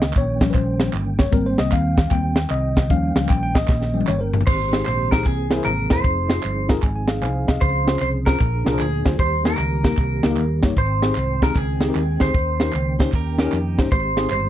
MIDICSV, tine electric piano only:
0, 0, Header, 1, 2, 480
1, 0, Start_track
1, 0, Key_signature, -4, "major"
1, 0, Tempo, 393443
1, 1620, Time_signature, 4, 2, 24, 8
1, 17681, End_track
2, 0, Start_track
2, 0, Title_t, "Tine electric piano"
2, 0, Program_c, 0, 4
2, 0, Note_on_c, 0, 75, 86
2, 159, Note_off_c, 0, 75, 0
2, 216, Note_on_c, 0, 73, 93
2, 496, Note_on_c, 0, 53, 55
2, 512, Note_on_c, 0, 55, 49
2, 514, Note_on_c, 0, 61, 58
2, 611, Note_on_c, 0, 71, 67
2, 633, Note_off_c, 0, 73, 0
2, 666, Note_on_c, 0, 72, 90
2, 667, Note_off_c, 0, 71, 0
2, 1108, Note_off_c, 0, 53, 0
2, 1110, Note_off_c, 0, 72, 0
2, 1117, Note_off_c, 0, 55, 0
2, 1118, Note_off_c, 0, 61, 0
2, 1461, Note_on_c, 0, 73, 93
2, 1601, Note_on_c, 0, 55, 55
2, 1610, Note_on_c, 0, 58, 50
2, 1619, Note_on_c, 0, 70, 89
2, 1621, Note_on_c, 0, 60, 61
2, 1628, Note_off_c, 0, 73, 0
2, 1784, Note_off_c, 0, 70, 0
2, 1784, Note_on_c, 0, 72, 88
2, 1944, Note_on_c, 0, 75, 99
2, 1946, Note_off_c, 0, 72, 0
2, 2104, Note_on_c, 0, 77, 97
2, 2106, Note_off_c, 0, 75, 0
2, 2363, Note_off_c, 0, 55, 0
2, 2367, Note_off_c, 0, 58, 0
2, 2373, Note_off_c, 0, 60, 0
2, 2568, Note_on_c, 0, 55, 49
2, 2573, Note_on_c, 0, 58, 47
2, 2578, Note_on_c, 0, 60, 55
2, 2581, Note_on_c, 0, 79, 101
2, 2594, Note_off_c, 0, 77, 0
2, 2855, Note_off_c, 0, 55, 0
2, 2857, Note_off_c, 0, 58, 0
2, 2860, Note_off_c, 0, 60, 0
2, 3024, Note_off_c, 0, 79, 0
2, 3059, Note_on_c, 0, 75, 101
2, 3534, Note_on_c, 0, 53, 52
2, 3541, Note_on_c, 0, 55, 49
2, 3546, Note_on_c, 0, 77, 95
2, 3548, Note_on_c, 0, 61, 60
2, 3550, Note_off_c, 0, 75, 0
2, 4019, Note_on_c, 0, 79, 100
2, 4033, Note_off_c, 0, 77, 0
2, 4168, Note_off_c, 0, 79, 0
2, 4183, Note_on_c, 0, 79, 90
2, 4287, Note_off_c, 0, 53, 0
2, 4291, Note_off_c, 0, 55, 0
2, 4295, Note_off_c, 0, 61, 0
2, 4330, Note_on_c, 0, 75, 96
2, 4342, Note_off_c, 0, 79, 0
2, 4805, Note_on_c, 0, 53, 49
2, 4805, Note_on_c, 0, 55, 49
2, 4812, Note_on_c, 0, 61, 57
2, 4954, Note_off_c, 0, 53, 0
2, 4954, Note_off_c, 0, 55, 0
2, 4958, Note_off_c, 0, 61, 0
2, 4975, Note_on_c, 0, 73, 98
2, 4989, Note_off_c, 0, 75, 0
2, 5106, Note_on_c, 0, 72, 63
2, 5108, Note_off_c, 0, 73, 0
2, 5133, Note_off_c, 0, 72, 0
2, 5133, Note_on_c, 0, 70, 67
2, 5378, Note_off_c, 0, 70, 0
2, 5453, Note_on_c, 0, 44, 55
2, 5772, Note_on_c, 0, 63, 69
2, 5777, Note_on_c, 0, 67, 62
2, 5791, Note_on_c, 0, 68, 58
2, 5798, Note_on_c, 0, 72, 71
2, 5886, Note_off_c, 0, 63, 0
2, 5889, Note_off_c, 0, 67, 0
2, 5896, Note_off_c, 0, 68, 0
2, 5899, Note_off_c, 0, 72, 0
2, 6198, Note_off_c, 0, 44, 0
2, 6243, Note_on_c, 0, 63, 68
2, 6251, Note_on_c, 0, 67, 62
2, 6258, Note_on_c, 0, 68, 61
2, 6262, Note_on_c, 0, 72, 69
2, 6362, Note_off_c, 0, 63, 0
2, 6366, Note_off_c, 0, 67, 0
2, 6369, Note_off_c, 0, 68, 0
2, 6371, Note_off_c, 0, 72, 0
2, 6403, Note_on_c, 0, 48, 60
2, 6712, Note_on_c, 0, 64, 68
2, 6719, Note_on_c, 0, 68, 62
2, 6726, Note_on_c, 0, 70, 61
2, 6731, Note_on_c, 0, 72, 75
2, 6778, Note_off_c, 0, 64, 0
2, 6781, Note_off_c, 0, 68, 0
2, 6785, Note_off_c, 0, 70, 0
2, 6787, Note_off_c, 0, 72, 0
2, 6791, Note_on_c, 0, 64, 59
2, 6801, Note_on_c, 0, 68, 58
2, 6807, Note_on_c, 0, 70, 57
2, 6812, Note_on_c, 0, 72, 68
2, 6949, Note_off_c, 0, 64, 0
2, 6954, Note_off_c, 0, 68, 0
2, 6957, Note_off_c, 0, 70, 0
2, 6959, Note_off_c, 0, 72, 0
2, 7154, Note_off_c, 0, 48, 0
2, 7197, Note_on_c, 0, 64, 65
2, 7203, Note_on_c, 0, 68, 58
2, 7211, Note_on_c, 0, 70, 63
2, 7215, Note_on_c, 0, 72, 70
2, 7319, Note_off_c, 0, 64, 0
2, 7323, Note_off_c, 0, 68, 0
2, 7326, Note_off_c, 0, 70, 0
2, 7329, Note_off_c, 0, 72, 0
2, 7665, Note_on_c, 0, 63, 67
2, 7676, Note_on_c, 0, 65, 62
2, 7683, Note_on_c, 0, 68, 63
2, 7693, Note_on_c, 0, 72, 72
2, 7794, Note_off_c, 0, 63, 0
2, 7800, Note_off_c, 0, 65, 0
2, 7803, Note_off_c, 0, 68, 0
2, 7808, Note_off_c, 0, 72, 0
2, 8156, Note_on_c, 0, 63, 75
2, 8162, Note_on_c, 0, 65, 74
2, 8172, Note_on_c, 0, 82, 63
2, 8175, Note_on_c, 0, 68, 76
2, 8176, Note_on_c, 0, 70, 86
2, 8280, Note_off_c, 0, 63, 0
2, 8283, Note_off_c, 0, 65, 0
2, 8290, Note_off_c, 0, 68, 0
2, 8290, Note_off_c, 0, 70, 0
2, 8325, Note_off_c, 0, 82, 0
2, 8333, Note_on_c, 0, 80, 65
2, 8470, Note_off_c, 0, 80, 0
2, 8485, Note_on_c, 0, 80, 67
2, 8635, Note_off_c, 0, 80, 0
2, 8641, Note_on_c, 0, 77, 59
2, 8645, Note_on_c, 0, 68, 54
2, 8790, Note_off_c, 0, 77, 0
2, 8805, Note_off_c, 0, 68, 0
2, 8805, Note_on_c, 0, 77, 72
2, 8805, Note_on_c, 0, 80, 72
2, 8811, Note_on_c, 0, 72, 60
2, 9104, Note_off_c, 0, 77, 0
2, 9110, Note_off_c, 0, 80, 0
2, 9113, Note_off_c, 0, 72, 0
2, 9122, Note_on_c, 0, 75, 65
2, 9128, Note_on_c, 0, 77, 60
2, 9130, Note_on_c, 0, 68, 47
2, 9281, Note_off_c, 0, 75, 0
2, 9294, Note_on_c, 0, 49, 55
2, 9587, Note_off_c, 0, 77, 0
2, 9588, Note_off_c, 0, 68, 0
2, 9597, Note_on_c, 0, 61, 70
2, 9608, Note_on_c, 0, 65, 61
2, 9612, Note_on_c, 0, 68, 61
2, 9619, Note_on_c, 0, 72, 79
2, 9722, Note_off_c, 0, 61, 0
2, 9728, Note_off_c, 0, 65, 0
2, 9730, Note_off_c, 0, 68, 0
2, 9734, Note_off_c, 0, 72, 0
2, 10044, Note_off_c, 0, 49, 0
2, 10078, Note_on_c, 0, 61, 70
2, 10081, Note_on_c, 0, 65, 64
2, 10085, Note_on_c, 0, 68, 66
2, 10099, Note_on_c, 0, 72, 76
2, 10203, Note_off_c, 0, 61, 0
2, 10205, Note_off_c, 0, 65, 0
2, 10207, Note_off_c, 0, 68, 0
2, 10214, Note_off_c, 0, 72, 0
2, 10249, Note_on_c, 0, 46, 64
2, 10549, Note_on_c, 0, 62, 67
2, 10555, Note_on_c, 0, 65, 65
2, 10565, Note_on_c, 0, 68, 64
2, 10569, Note_on_c, 0, 70, 74
2, 10621, Note_off_c, 0, 62, 0
2, 10624, Note_off_c, 0, 65, 0
2, 10629, Note_off_c, 0, 68, 0
2, 10631, Note_off_c, 0, 70, 0
2, 10642, Note_on_c, 0, 62, 67
2, 10650, Note_on_c, 0, 65, 60
2, 10657, Note_on_c, 0, 68, 54
2, 10666, Note_on_c, 0, 72, 68
2, 10799, Note_off_c, 0, 62, 0
2, 10803, Note_off_c, 0, 65, 0
2, 10806, Note_off_c, 0, 68, 0
2, 10811, Note_off_c, 0, 72, 0
2, 11002, Note_off_c, 0, 46, 0
2, 11038, Note_on_c, 0, 62, 63
2, 11045, Note_on_c, 0, 65, 60
2, 11046, Note_on_c, 0, 68, 62
2, 11053, Note_on_c, 0, 72, 75
2, 11164, Note_off_c, 0, 62, 0
2, 11168, Note_off_c, 0, 65, 0
2, 11168, Note_off_c, 0, 68, 0
2, 11172, Note_off_c, 0, 72, 0
2, 11217, Note_on_c, 0, 51, 57
2, 11510, Note_on_c, 0, 58, 68
2, 11528, Note_on_c, 0, 63, 65
2, 11528, Note_on_c, 0, 67, 61
2, 11535, Note_on_c, 0, 70, 75
2, 11641, Note_off_c, 0, 58, 0
2, 11650, Note_off_c, 0, 63, 0
2, 11650, Note_off_c, 0, 67, 0
2, 11654, Note_off_c, 0, 70, 0
2, 11967, Note_off_c, 0, 51, 0
2, 11997, Note_on_c, 0, 58, 63
2, 12001, Note_on_c, 0, 63, 56
2, 12006, Note_on_c, 0, 67, 56
2, 12021, Note_on_c, 0, 70, 74
2, 12125, Note_off_c, 0, 58, 0
2, 12127, Note_off_c, 0, 63, 0
2, 12129, Note_off_c, 0, 67, 0
2, 12137, Note_off_c, 0, 70, 0
2, 12482, Note_on_c, 0, 58, 80
2, 12494, Note_on_c, 0, 63, 74
2, 12498, Note_on_c, 0, 70, 87
2, 12501, Note_on_c, 0, 67, 73
2, 12549, Note_off_c, 0, 58, 0
2, 12555, Note_off_c, 0, 63, 0
2, 12557, Note_off_c, 0, 70, 0
2, 12558, Note_off_c, 0, 67, 0
2, 12571, Note_on_c, 0, 58, 75
2, 12578, Note_on_c, 0, 63, 64
2, 12590, Note_on_c, 0, 67, 66
2, 12591, Note_on_c, 0, 70, 82
2, 12725, Note_off_c, 0, 58, 0
2, 12728, Note_off_c, 0, 63, 0
2, 12735, Note_off_c, 0, 67, 0
2, 12735, Note_off_c, 0, 70, 0
2, 12968, Note_on_c, 0, 58, 74
2, 12979, Note_on_c, 0, 63, 70
2, 12985, Note_on_c, 0, 67, 68
2, 12993, Note_on_c, 0, 73, 80
2, 13091, Note_off_c, 0, 58, 0
2, 13096, Note_off_c, 0, 63, 0
2, 13099, Note_off_c, 0, 67, 0
2, 13104, Note_off_c, 0, 73, 0
2, 13147, Note_on_c, 0, 44, 58
2, 13448, Note_on_c, 0, 60, 66
2, 13459, Note_on_c, 0, 63, 56
2, 13467, Note_on_c, 0, 67, 65
2, 13477, Note_on_c, 0, 68, 70
2, 13571, Note_off_c, 0, 60, 0
2, 13577, Note_off_c, 0, 63, 0
2, 13581, Note_off_c, 0, 67, 0
2, 13586, Note_off_c, 0, 68, 0
2, 13892, Note_off_c, 0, 44, 0
2, 13937, Note_on_c, 0, 60, 70
2, 13943, Note_on_c, 0, 63, 63
2, 13950, Note_on_c, 0, 67, 57
2, 13959, Note_on_c, 0, 68, 71
2, 14056, Note_off_c, 0, 60, 0
2, 14059, Note_off_c, 0, 63, 0
2, 14063, Note_off_c, 0, 67, 0
2, 14067, Note_off_c, 0, 68, 0
2, 14416, Note_on_c, 0, 60, 69
2, 14420, Note_on_c, 0, 63, 65
2, 14425, Note_on_c, 0, 67, 63
2, 14428, Note_on_c, 0, 68, 77
2, 14477, Note_off_c, 0, 60, 0
2, 14479, Note_off_c, 0, 63, 0
2, 14482, Note_off_c, 0, 67, 0
2, 14483, Note_off_c, 0, 68, 0
2, 14495, Note_on_c, 0, 60, 67
2, 14500, Note_on_c, 0, 63, 58
2, 14515, Note_on_c, 0, 67, 62
2, 14518, Note_on_c, 0, 70, 70
2, 14648, Note_off_c, 0, 60, 0
2, 14650, Note_off_c, 0, 63, 0
2, 14658, Note_off_c, 0, 67, 0
2, 14660, Note_off_c, 0, 70, 0
2, 14884, Note_on_c, 0, 60, 67
2, 14892, Note_on_c, 0, 63, 60
2, 14902, Note_on_c, 0, 67, 60
2, 14913, Note_on_c, 0, 68, 73
2, 15010, Note_off_c, 0, 60, 0
2, 15014, Note_off_c, 0, 63, 0
2, 15019, Note_off_c, 0, 67, 0
2, 15024, Note_off_c, 0, 68, 0
2, 15060, Note_on_c, 0, 51, 57
2, 15371, Note_on_c, 0, 61, 65
2, 15378, Note_on_c, 0, 63, 63
2, 15389, Note_on_c, 0, 67, 63
2, 15390, Note_on_c, 0, 70, 70
2, 15494, Note_off_c, 0, 61, 0
2, 15497, Note_off_c, 0, 63, 0
2, 15503, Note_off_c, 0, 67, 0
2, 15503, Note_off_c, 0, 70, 0
2, 15809, Note_off_c, 0, 51, 0
2, 15850, Note_on_c, 0, 61, 78
2, 15857, Note_on_c, 0, 63, 72
2, 15862, Note_on_c, 0, 67, 72
2, 15872, Note_on_c, 0, 72, 93
2, 15973, Note_off_c, 0, 61, 0
2, 15977, Note_off_c, 0, 63, 0
2, 15979, Note_off_c, 0, 67, 0
2, 15984, Note_off_c, 0, 72, 0
2, 16325, Note_on_c, 0, 61, 84
2, 16335, Note_on_c, 0, 63, 75
2, 16343, Note_on_c, 0, 67, 76
2, 16345, Note_on_c, 0, 70, 88
2, 16392, Note_off_c, 0, 61, 0
2, 16397, Note_off_c, 0, 63, 0
2, 16401, Note_off_c, 0, 67, 0
2, 16402, Note_off_c, 0, 70, 0
2, 16408, Note_on_c, 0, 61, 77
2, 16423, Note_on_c, 0, 63, 71
2, 16429, Note_on_c, 0, 67, 71
2, 16429, Note_on_c, 0, 70, 87
2, 16565, Note_off_c, 0, 61, 0
2, 16572, Note_off_c, 0, 63, 0
2, 16575, Note_off_c, 0, 70, 0
2, 16576, Note_off_c, 0, 67, 0
2, 16809, Note_on_c, 0, 61, 80
2, 16815, Note_on_c, 0, 63, 73
2, 16825, Note_on_c, 0, 67, 69
2, 16828, Note_on_c, 0, 72, 88
2, 16933, Note_off_c, 0, 61, 0
2, 16936, Note_off_c, 0, 63, 0
2, 16941, Note_off_c, 0, 67, 0
2, 16942, Note_off_c, 0, 72, 0
2, 16990, Note_on_c, 0, 44, 55
2, 17287, Note_on_c, 0, 60, 68
2, 17297, Note_on_c, 0, 63, 62
2, 17305, Note_on_c, 0, 67, 63
2, 17306, Note_on_c, 0, 68, 77
2, 17412, Note_off_c, 0, 60, 0
2, 17417, Note_off_c, 0, 63, 0
2, 17421, Note_off_c, 0, 67, 0
2, 17421, Note_off_c, 0, 68, 0
2, 17681, Note_off_c, 0, 44, 0
2, 17681, End_track
0, 0, End_of_file